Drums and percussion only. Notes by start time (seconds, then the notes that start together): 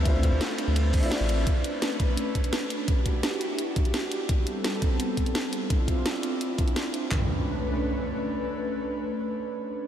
0.05 kick, closed hi-hat, ride
0.23 kick, closed hi-hat, ride
0.41 snare, closed hi-hat, ride
0.58 closed hi-hat, ride
0.76 closed hi-hat, ride
0.93 kick, closed hi-hat, open hi-hat
1.03 closed hi-hat, ride
1.11 snare, closed hi-hat, ride
1.20 ride
1.29 closed hi-hat, ride
1.47 kick, closed hi-hat
1.64 closed hi-hat
1.82 snare, closed hi-hat
2.00 kick, closed hi-hat
2.17 closed hi-hat
2.35 kick, closed hi-hat
2.44 closed hi-hat
2.53 snare, closed hi-hat
2.70 closed hi-hat
2.88 kick, closed hi-hat
3.06 kick, closed hi-hat
3.23 snare, closed hi-hat
3.41 closed hi-hat
3.59 closed hi-hat
3.76 kick, closed hi-hat
3.85 closed hi-hat
3.94 snare, closed hi-hat
4.12 closed hi-hat
4.29 kick, closed hi-hat
4.47 closed hi-hat
4.64 snare, closed hi-hat
4.82 kick, closed hi-hat
5.00 closed hi-hat
5.17 kick, closed hi-hat
5.26 closed hi-hat
5.35 snare, closed hi-hat
5.53 closed hi-hat
5.70 kick, closed hi-hat
5.88 kick, closed hi-hat
6.06 snare, closed hi-hat
6.23 closed hi-hat
6.41 closed hi-hat
6.58 kick, closed hi-hat
6.68 closed hi-hat
6.76 snare, closed hi-hat
6.94 closed hi-hat
7.11 kick, clap, floor tom